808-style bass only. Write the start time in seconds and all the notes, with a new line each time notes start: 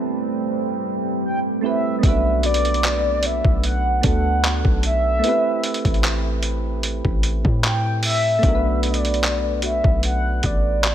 2.03 B1
3.45 B1
4.04 D2
4.65 B1
5.85 A1
7.05 A1
7.45 A2
8.43 B1
9.84 B1
10.44 A1